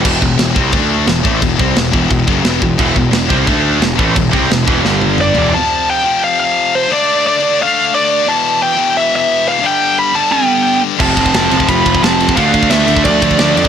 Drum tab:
CC |x---x---x---x---|x---x---x---x---|x---x---x---x---|x---x-----------|
RD |----------------|----------------|----------------|----------------|
SD |----o-------o---|----o-------o---|----o-------o---|----o---o-------|
T1 |----------------|----------------|----------------|----------o-----|
T2 |----------------|----------------|----------------|------------o---|
FT |----------------|----------------|----------------|--------------o-|
BD |o-o---o-o-----o-|o-o---o-o-o---o-|o-o---o-o-----o-|o-o---o---------|

CC |----------------|----------------|----------------|----------------|
RD |----------------|----------------|----------------|----------------|
SD |----------------|----------------|----------------|----------------|
T1 |----------------|----------------|----------------|----------------|
T2 |----------------|----------------|----------------|----------------|
FT |----------------|----------------|----------------|----------------|
BD |----------------|----------------|----------------|----------------|

CC |x---------------|----------------|
RD |--x-x-x-x-x-x-x-|x-x-x-x-x-x-x-x-|
SD |----o-------o---|----o-------o---|
T1 |----------------|----------------|
T2 |----------------|----------------|
FT |----------------|----------------|
BD |o-oo---oo-oo---o|o-oo---oo-oo---o|